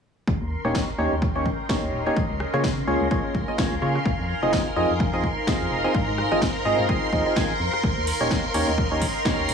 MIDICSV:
0, 0, Header, 1, 6, 480
1, 0, Start_track
1, 0, Tempo, 472441
1, 280, Time_signature, 4, 2, 24, 8
1, 9692, End_track
2, 0, Start_track
2, 0, Title_t, "String machine"
2, 0, Program_c, 0, 50
2, 280, Note_on_c, 0, 70, 89
2, 280, Note_on_c, 0, 84, 89
2, 9692, Note_off_c, 0, 70, 0
2, 9692, Note_off_c, 0, 84, 0
2, 9692, End_track
3, 0, Start_track
3, 0, Title_t, "Analog synth pad"
3, 0, Program_c, 1, 89
3, 279, Note_on_c, 1, 61, 84
3, 414, Note_on_c, 1, 70, 71
3, 971, Note_on_c, 1, 79, 82
3, 1154, Note_on_c, 1, 75, 92
3, 2200, Note_off_c, 1, 79, 0
3, 2973, Note_off_c, 1, 75, 0
3, 3076, Note_on_c, 1, 77, 96
3, 3076, Note_on_c, 1, 80, 78
3, 4118, Note_on_c, 1, 63, 91
3, 4120, Note_off_c, 1, 61, 0
3, 4718, Note_on_c, 1, 72, 91
3, 4841, Note_off_c, 1, 70, 0
3, 7959, Note_off_c, 1, 80, 0
3, 7959, Note_on_c, 1, 61, 75
3, 8189, Note_on_c, 1, 70, 73
3, 8416, Note_on_c, 1, 75, 84
3, 8734, Note_off_c, 1, 63, 0
3, 8734, Note_off_c, 1, 77, 0
3, 8735, Note_off_c, 1, 72, 0
3, 8836, Note_on_c, 1, 79, 74
3, 9692, Note_off_c, 1, 61, 0
3, 9692, Note_off_c, 1, 70, 0
3, 9692, Note_off_c, 1, 75, 0
3, 9692, Note_off_c, 1, 79, 0
3, 9692, End_track
4, 0, Start_track
4, 0, Title_t, "Synth stab"
4, 0, Program_c, 2, 62
4, 657, Note_on_c, 2, 58, 82
4, 657, Note_on_c, 2, 61, 75
4, 657, Note_on_c, 2, 63, 73
4, 657, Note_on_c, 2, 67, 77
4, 657, Note_on_c, 2, 73, 89
4, 904, Note_off_c, 2, 58, 0
4, 904, Note_off_c, 2, 61, 0
4, 904, Note_off_c, 2, 63, 0
4, 904, Note_off_c, 2, 67, 0
4, 904, Note_off_c, 2, 73, 0
4, 1000, Note_on_c, 2, 58, 98
4, 1000, Note_on_c, 2, 61, 86
4, 1000, Note_on_c, 2, 63, 84
4, 1000, Note_on_c, 2, 67, 90
4, 1000, Note_on_c, 2, 73, 106
4, 1167, Note_off_c, 2, 58, 0
4, 1167, Note_off_c, 2, 61, 0
4, 1167, Note_off_c, 2, 63, 0
4, 1167, Note_off_c, 2, 67, 0
4, 1167, Note_off_c, 2, 73, 0
4, 1377, Note_on_c, 2, 58, 86
4, 1377, Note_on_c, 2, 61, 78
4, 1377, Note_on_c, 2, 63, 74
4, 1377, Note_on_c, 2, 67, 73
4, 1377, Note_on_c, 2, 73, 93
4, 1520, Note_off_c, 2, 58, 0
4, 1520, Note_off_c, 2, 61, 0
4, 1520, Note_off_c, 2, 63, 0
4, 1520, Note_off_c, 2, 67, 0
4, 1520, Note_off_c, 2, 73, 0
4, 1720, Note_on_c, 2, 58, 71
4, 1720, Note_on_c, 2, 61, 69
4, 1720, Note_on_c, 2, 63, 69
4, 1720, Note_on_c, 2, 67, 69
4, 1720, Note_on_c, 2, 73, 79
4, 2065, Note_off_c, 2, 58, 0
4, 2065, Note_off_c, 2, 61, 0
4, 2065, Note_off_c, 2, 63, 0
4, 2065, Note_off_c, 2, 67, 0
4, 2065, Note_off_c, 2, 73, 0
4, 2097, Note_on_c, 2, 58, 82
4, 2097, Note_on_c, 2, 61, 76
4, 2097, Note_on_c, 2, 63, 73
4, 2097, Note_on_c, 2, 67, 79
4, 2097, Note_on_c, 2, 73, 90
4, 2188, Note_off_c, 2, 58, 0
4, 2188, Note_off_c, 2, 61, 0
4, 2188, Note_off_c, 2, 63, 0
4, 2188, Note_off_c, 2, 67, 0
4, 2188, Note_off_c, 2, 73, 0
4, 2577, Note_on_c, 2, 58, 94
4, 2577, Note_on_c, 2, 61, 89
4, 2577, Note_on_c, 2, 65, 84
4, 2577, Note_on_c, 2, 68, 89
4, 2577, Note_on_c, 2, 73, 103
4, 2720, Note_off_c, 2, 58, 0
4, 2720, Note_off_c, 2, 61, 0
4, 2720, Note_off_c, 2, 65, 0
4, 2720, Note_off_c, 2, 68, 0
4, 2720, Note_off_c, 2, 73, 0
4, 2920, Note_on_c, 2, 58, 96
4, 2920, Note_on_c, 2, 61, 91
4, 2920, Note_on_c, 2, 65, 89
4, 2920, Note_on_c, 2, 68, 90
4, 2920, Note_on_c, 2, 73, 105
4, 3129, Note_off_c, 2, 58, 0
4, 3129, Note_off_c, 2, 61, 0
4, 3129, Note_off_c, 2, 65, 0
4, 3129, Note_off_c, 2, 68, 0
4, 3129, Note_off_c, 2, 73, 0
4, 3160, Note_on_c, 2, 58, 88
4, 3160, Note_on_c, 2, 61, 78
4, 3160, Note_on_c, 2, 65, 85
4, 3160, Note_on_c, 2, 68, 79
4, 3160, Note_on_c, 2, 73, 94
4, 3409, Note_off_c, 2, 58, 0
4, 3409, Note_off_c, 2, 61, 0
4, 3409, Note_off_c, 2, 65, 0
4, 3409, Note_off_c, 2, 68, 0
4, 3409, Note_off_c, 2, 73, 0
4, 3537, Note_on_c, 2, 58, 69
4, 3537, Note_on_c, 2, 61, 59
4, 3537, Note_on_c, 2, 65, 59
4, 3537, Note_on_c, 2, 68, 67
4, 3537, Note_on_c, 2, 75, 78
4, 3625, Note_off_c, 2, 58, 0
4, 3625, Note_off_c, 2, 61, 0
4, 3625, Note_off_c, 2, 65, 0
4, 3625, Note_off_c, 2, 68, 0
4, 3625, Note_off_c, 2, 75, 0
4, 3640, Note_on_c, 2, 58, 90
4, 3640, Note_on_c, 2, 61, 84
4, 3640, Note_on_c, 2, 65, 83
4, 3640, Note_on_c, 2, 68, 83
4, 3640, Note_on_c, 2, 73, 97
4, 3807, Note_off_c, 2, 58, 0
4, 3807, Note_off_c, 2, 61, 0
4, 3807, Note_off_c, 2, 65, 0
4, 3807, Note_off_c, 2, 68, 0
4, 3807, Note_off_c, 2, 73, 0
4, 3880, Note_on_c, 2, 58, 73
4, 3880, Note_on_c, 2, 61, 67
4, 3880, Note_on_c, 2, 65, 64
4, 3880, Note_on_c, 2, 68, 68
4, 3880, Note_on_c, 2, 73, 84
4, 4047, Note_off_c, 2, 58, 0
4, 4047, Note_off_c, 2, 61, 0
4, 4047, Note_off_c, 2, 65, 0
4, 4047, Note_off_c, 2, 68, 0
4, 4047, Note_off_c, 2, 73, 0
4, 4497, Note_on_c, 2, 63, 77
4, 4497, Note_on_c, 2, 65, 73
4, 4497, Note_on_c, 2, 68, 76
4, 4497, Note_on_c, 2, 75, 89
4, 4498, Note_on_c, 2, 60, 84
4, 4744, Note_off_c, 2, 60, 0
4, 4744, Note_off_c, 2, 63, 0
4, 4744, Note_off_c, 2, 65, 0
4, 4744, Note_off_c, 2, 68, 0
4, 4744, Note_off_c, 2, 75, 0
4, 4840, Note_on_c, 2, 60, 96
4, 4840, Note_on_c, 2, 63, 85
4, 4840, Note_on_c, 2, 65, 88
4, 4840, Note_on_c, 2, 68, 88
4, 4840, Note_on_c, 2, 75, 106
4, 5007, Note_off_c, 2, 60, 0
4, 5007, Note_off_c, 2, 63, 0
4, 5007, Note_off_c, 2, 65, 0
4, 5007, Note_off_c, 2, 68, 0
4, 5007, Note_off_c, 2, 75, 0
4, 5218, Note_on_c, 2, 60, 81
4, 5218, Note_on_c, 2, 63, 77
4, 5218, Note_on_c, 2, 65, 80
4, 5218, Note_on_c, 2, 68, 78
4, 5218, Note_on_c, 2, 75, 87
4, 5360, Note_off_c, 2, 60, 0
4, 5360, Note_off_c, 2, 68, 0
4, 5361, Note_off_c, 2, 63, 0
4, 5361, Note_off_c, 2, 65, 0
4, 5361, Note_off_c, 2, 75, 0
4, 5560, Note_on_c, 2, 60, 74
4, 5560, Note_on_c, 2, 63, 68
4, 5560, Note_on_c, 2, 65, 68
4, 5560, Note_on_c, 2, 68, 72
4, 5560, Note_on_c, 2, 75, 80
4, 5904, Note_off_c, 2, 60, 0
4, 5904, Note_off_c, 2, 65, 0
4, 5905, Note_off_c, 2, 63, 0
4, 5905, Note_off_c, 2, 68, 0
4, 5905, Note_off_c, 2, 75, 0
4, 5937, Note_on_c, 2, 60, 85
4, 5937, Note_on_c, 2, 63, 77
4, 5937, Note_on_c, 2, 65, 77
4, 5937, Note_on_c, 2, 68, 75
4, 5937, Note_on_c, 2, 75, 90
4, 6028, Note_off_c, 2, 60, 0
4, 6028, Note_off_c, 2, 63, 0
4, 6028, Note_off_c, 2, 65, 0
4, 6028, Note_off_c, 2, 68, 0
4, 6028, Note_off_c, 2, 75, 0
4, 6417, Note_on_c, 2, 60, 90
4, 6417, Note_on_c, 2, 63, 87
4, 6417, Note_on_c, 2, 65, 89
4, 6417, Note_on_c, 2, 68, 87
4, 6417, Note_on_c, 2, 75, 99
4, 6560, Note_off_c, 2, 60, 0
4, 6560, Note_off_c, 2, 63, 0
4, 6560, Note_off_c, 2, 65, 0
4, 6560, Note_off_c, 2, 68, 0
4, 6560, Note_off_c, 2, 75, 0
4, 6760, Note_on_c, 2, 60, 97
4, 6760, Note_on_c, 2, 63, 88
4, 6760, Note_on_c, 2, 65, 91
4, 6760, Note_on_c, 2, 68, 92
4, 6760, Note_on_c, 2, 75, 109
4, 6969, Note_off_c, 2, 60, 0
4, 6969, Note_off_c, 2, 63, 0
4, 6969, Note_off_c, 2, 65, 0
4, 6969, Note_off_c, 2, 68, 0
4, 6969, Note_off_c, 2, 75, 0
4, 7000, Note_on_c, 2, 60, 88
4, 7000, Note_on_c, 2, 63, 79
4, 7000, Note_on_c, 2, 65, 83
4, 7000, Note_on_c, 2, 68, 82
4, 7000, Note_on_c, 2, 75, 92
4, 7219, Note_off_c, 2, 63, 0
4, 7219, Note_off_c, 2, 68, 0
4, 7220, Note_off_c, 2, 60, 0
4, 7220, Note_off_c, 2, 65, 0
4, 7220, Note_off_c, 2, 75, 0
4, 7239, Note_on_c, 2, 63, 85
4, 7239, Note_on_c, 2, 75, 99
4, 7240, Note_on_c, 2, 60, 91
4, 7240, Note_on_c, 2, 65, 83
4, 7240, Note_on_c, 2, 68, 85
4, 7356, Note_off_c, 2, 75, 0
4, 7357, Note_off_c, 2, 60, 0
4, 7357, Note_off_c, 2, 63, 0
4, 7357, Note_off_c, 2, 65, 0
4, 7357, Note_off_c, 2, 68, 0
4, 7377, Note_on_c, 2, 60, 80
4, 7377, Note_on_c, 2, 65, 73
4, 7377, Note_on_c, 2, 68, 73
4, 7377, Note_on_c, 2, 75, 89
4, 7378, Note_on_c, 2, 63, 74
4, 7465, Note_off_c, 2, 60, 0
4, 7465, Note_off_c, 2, 63, 0
4, 7465, Note_off_c, 2, 65, 0
4, 7465, Note_off_c, 2, 68, 0
4, 7465, Note_off_c, 2, 75, 0
4, 7480, Note_on_c, 2, 60, 74
4, 7480, Note_on_c, 2, 63, 71
4, 7480, Note_on_c, 2, 65, 68
4, 7480, Note_on_c, 2, 68, 68
4, 7480, Note_on_c, 2, 80, 86
4, 7647, Note_off_c, 2, 60, 0
4, 7647, Note_off_c, 2, 63, 0
4, 7647, Note_off_c, 2, 65, 0
4, 7647, Note_off_c, 2, 68, 0
4, 7647, Note_off_c, 2, 80, 0
4, 8337, Note_on_c, 2, 61, 77
4, 8337, Note_on_c, 2, 67, 73
4, 8337, Note_on_c, 2, 73, 89
4, 8338, Note_on_c, 2, 58, 87
4, 8338, Note_on_c, 2, 63, 75
4, 8584, Note_off_c, 2, 58, 0
4, 8584, Note_off_c, 2, 61, 0
4, 8584, Note_off_c, 2, 63, 0
4, 8584, Note_off_c, 2, 67, 0
4, 8584, Note_off_c, 2, 73, 0
4, 8680, Note_on_c, 2, 58, 94
4, 8680, Note_on_c, 2, 61, 85
4, 8680, Note_on_c, 2, 63, 89
4, 8680, Note_on_c, 2, 67, 90
4, 8680, Note_on_c, 2, 73, 107
4, 8847, Note_off_c, 2, 58, 0
4, 8847, Note_off_c, 2, 61, 0
4, 8847, Note_off_c, 2, 63, 0
4, 8847, Note_off_c, 2, 67, 0
4, 8847, Note_off_c, 2, 73, 0
4, 9056, Note_on_c, 2, 63, 79
4, 9057, Note_on_c, 2, 58, 79
4, 9057, Note_on_c, 2, 61, 75
4, 9057, Note_on_c, 2, 67, 75
4, 9057, Note_on_c, 2, 73, 92
4, 9200, Note_off_c, 2, 58, 0
4, 9200, Note_off_c, 2, 61, 0
4, 9200, Note_off_c, 2, 63, 0
4, 9200, Note_off_c, 2, 67, 0
4, 9200, Note_off_c, 2, 73, 0
4, 9400, Note_on_c, 2, 58, 74
4, 9400, Note_on_c, 2, 61, 66
4, 9400, Note_on_c, 2, 63, 71
4, 9400, Note_on_c, 2, 67, 68
4, 9400, Note_on_c, 2, 73, 81
4, 9692, Note_off_c, 2, 58, 0
4, 9692, Note_off_c, 2, 61, 0
4, 9692, Note_off_c, 2, 63, 0
4, 9692, Note_off_c, 2, 67, 0
4, 9692, Note_off_c, 2, 73, 0
4, 9692, End_track
5, 0, Start_track
5, 0, Title_t, "FM bass"
5, 0, Program_c, 3, 39
5, 279, Note_on_c, 3, 39, 99
5, 372, Note_off_c, 3, 39, 0
5, 417, Note_on_c, 3, 39, 91
5, 567, Note_off_c, 3, 39, 0
5, 657, Note_on_c, 3, 27, 100
5, 946, Note_off_c, 3, 27, 0
5, 1000, Note_on_c, 3, 39, 85
5, 1092, Note_off_c, 3, 39, 0
5, 1138, Note_on_c, 3, 39, 96
5, 1480, Note_on_c, 3, 37, 76
5, 1495, Note_off_c, 3, 39, 0
5, 1572, Note_off_c, 3, 37, 0
5, 1857, Note_on_c, 3, 39, 79
5, 1926, Note_off_c, 3, 39, 0
5, 1959, Note_on_c, 3, 27, 78
5, 2132, Note_off_c, 3, 27, 0
5, 2200, Note_on_c, 3, 37, 101
5, 2292, Note_off_c, 3, 37, 0
5, 2337, Note_on_c, 3, 37, 88
5, 2487, Note_off_c, 3, 37, 0
5, 2577, Note_on_c, 3, 49, 100
5, 2866, Note_off_c, 3, 49, 0
5, 2920, Note_on_c, 3, 37, 84
5, 3012, Note_off_c, 3, 37, 0
5, 3058, Note_on_c, 3, 37, 96
5, 3127, Note_off_c, 3, 37, 0
5, 3400, Note_on_c, 3, 37, 77
5, 3492, Note_off_c, 3, 37, 0
5, 3777, Note_on_c, 3, 37, 76
5, 3846, Note_off_c, 3, 37, 0
5, 3881, Note_on_c, 3, 49, 80
5, 4053, Note_off_c, 3, 49, 0
5, 4120, Note_on_c, 3, 41, 101
5, 4213, Note_off_c, 3, 41, 0
5, 4257, Note_on_c, 3, 41, 91
5, 4407, Note_off_c, 3, 41, 0
5, 4498, Note_on_c, 3, 29, 96
5, 4786, Note_off_c, 3, 29, 0
5, 4841, Note_on_c, 3, 41, 88
5, 4932, Note_off_c, 3, 41, 0
5, 4978, Note_on_c, 3, 41, 93
5, 5321, Note_on_c, 3, 39, 73
5, 5336, Note_off_c, 3, 41, 0
5, 5413, Note_off_c, 3, 39, 0
5, 5697, Note_on_c, 3, 41, 74
5, 5766, Note_off_c, 3, 41, 0
5, 5801, Note_on_c, 3, 29, 75
5, 5973, Note_off_c, 3, 29, 0
5, 6041, Note_on_c, 3, 44, 100
5, 6133, Note_off_c, 3, 44, 0
5, 6178, Note_on_c, 3, 44, 91
5, 6327, Note_off_c, 3, 44, 0
5, 6418, Note_on_c, 3, 32, 99
5, 6706, Note_off_c, 3, 32, 0
5, 6761, Note_on_c, 3, 44, 87
5, 6853, Note_off_c, 3, 44, 0
5, 6898, Note_on_c, 3, 44, 98
5, 6967, Note_off_c, 3, 44, 0
5, 7241, Note_on_c, 3, 39, 105
5, 7333, Note_off_c, 3, 39, 0
5, 7619, Note_on_c, 3, 32, 74
5, 7687, Note_off_c, 3, 32, 0
5, 7721, Note_on_c, 3, 41, 93
5, 7813, Note_off_c, 3, 41, 0
5, 7960, Note_on_c, 3, 39, 100
5, 8052, Note_off_c, 3, 39, 0
5, 8099, Note_on_c, 3, 39, 92
5, 8248, Note_off_c, 3, 39, 0
5, 8338, Note_on_c, 3, 27, 99
5, 8626, Note_off_c, 3, 27, 0
5, 8680, Note_on_c, 3, 39, 86
5, 8772, Note_off_c, 3, 39, 0
5, 8818, Note_on_c, 3, 39, 98
5, 9160, Note_on_c, 3, 37, 77
5, 9175, Note_off_c, 3, 39, 0
5, 9252, Note_off_c, 3, 37, 0
5, 9538, Note_on_c, 3, 39, 73
5, 9607, Note_off_c, 3, 39, 0
5, 9641, Note_on_c, 3, 27, 77
5, 9692, Note_off_c, 3, 27, 0
5, 9692, End_track
6, 0, Start_track
6, 0, Title_t, "Drums"
6, 279, Note_on_c, 9, 36, 114
6, 381, Note_off_c, 9, 36, 0
6, 759, Note_on_c, 9, 36, 106
6, 763, Note_on_c, 9, 38, 118
6, 861, Note_off_c, 9, 36, 0
6, 864, Note_off_c, 9, 38, 0
6, 1239, Note_on_c, 9, 36, 107
6, 1341, Note_off_c, 9, 36, 0
6, 1480, Note_on_c, 9, 36, 60
6, 1581, Note_off_c, 9, 36, 0
6, 1720, Note_on_c, 9, 36, 110
6, 1723, Note_on_c, 9, 38, 121
6, 1821, Note_off_c, 9, 36, 0
6, 1824, Note_off_c, 9, 38, 0
6, 2200, Note_on_c, 9, 36, 117
6, 2302, Note_off_c, 9, 36, 0
6, 2440, Note_on_c, 9, 37, 72
6, 2542, Note_off_c, 9, 37, 0
6, 2577, Note_on_c, 9, 37, 53
6, 2679, Note_off_c, 9, 37, 0
6, 2680, Note_on_c, 9, 36, 111
6, 2683, Note_on_c, 9, 38, 121
6, 2781, Note_off_c, 9, 36, 0
6, 2784, Note_off_c, 9, 38, 0
6, 3160, Note_on_c, 9, 36, 107
6, 3262, Note_off_c, 9, 36, 0
6, 3400, Note_on_c, 9, 36, 60
6, 3502, Note_off_c, 9, 36, 0
6, 3640, Note_on_c, 9, 36, 115
6, 3643, Note_on_c, 9, 38, 122
6, 3742, Note_off_c, 9, 36, 0
6, 3745, Note_off_c, 9, 38, 0
6, 4018, Note_on_c, 9, 37, 54
6, 4119, Note_off_c, 9, 37, 0
6, 4120, Note_on_c, 9, 36, 120
6, 4222, Note_off_c, 9, 36, 0
6, 4600, Note_on_c, 9, 36, 114
6, 4604, Note_on_c, 9, 38, 116
6, 4702, Note_off_c, 9, 36, 0
6, 4705, Note_off_c, 9, 38, 0
6, 5080, Note_on_c, 9, 36, 121
6, 5182, Note_off_c, 9, 36, 0
6, 5320, Note_on_c, 9, 36, 59
6, 5422, Note_off_c, 9, 36, 0
6, 5561, Note_on_c, 9, 36, 116
6, 5564, Note_on_c, 9, 38, 120
6, 5662, Note_off_c, 9, 36, 0
6, 5665, Note_off_c, 9, 38, 0
6, 6040, Note_on_c, 9, 36, 112
6, 6142, Note_off_c, 9, 36, 0
6, 6281, Note_on_c, 9, 37, 75
6, 6383, Note_off_c, 9, 37, 0
6, 6418, Note_on_c, 9, 37, 55
6, 6520, Note_off_c, 9, 37, 0
6, 6520, Note_on_c, 9, 36, 117
6, 6523, Note_on_c, 9, 38, 114
6, 6622, Note_off_c, 9, 36, 0
6, 6625, Note_off_c, 9, 38, 0
6, 7000, Note_on_c, 9, 36, 107
6, 7102, Note_off_c, 9, 36, 0
6, 7240, Note_on_c, 9, 36, 61
6, 7342, Note_off_c, 9, 36, 0
6, 7481, Note_on_c, 9, 36, 112
6, 7483, Note_on_c, 9, 38, 112
6, 7582, Note_off_c, 9, 36, 0
6, 7585, Note_off_c, 9, 38, 0
6, 7858, Note_on_c, 9, 37, 57
6, 7960, Note_off_c, 9, 37, 0
6, 7960, Note_on_c, 9, 36, 111
6, 8062, Note_off_c, 9, 36, 0
6, 8201, Note_on_c, 9, 46, 97
6, 8302, Note_off_c, 9, 46, 0
6, 8440, Note_on_c, 9, 36, 109
6, 8444, Note_on_c, 9, 38, 113
6, 8542, Note_off_c, 9, 36, 0
6, 8545, Note_off_c, 9, 38, 0
6, 8680, Note_on_c, 9, 46, 94
6, 8782, Note_off_c, 9, 46, 0
6, 8920, Note_on_c, 9, 36, 110
6, 9022, Note_off_c, 9, 36, 0
6, 9160, Note_on_c, 9, 36, 58
6, 9160, Note_on_c, 9, 46, 102
6, 9262, Note_off_c, 9, 36, 0
6, 9262, Note_off_c, 9, 46, 0
6, 9400, Note_on_c, 9, 36, 114
6, 9403, Note_on_c, 9, 38, 117
6, 9502, Note_off_c, 9, 36, 0
6, 9505, Note_off_c, 9, 38, 0
6, 9640, Note_on_c, 9, 46, 93
6, 9692, Note_off_c, 9, 46, 0
6, 9692, End_track
0, 0, End_of_file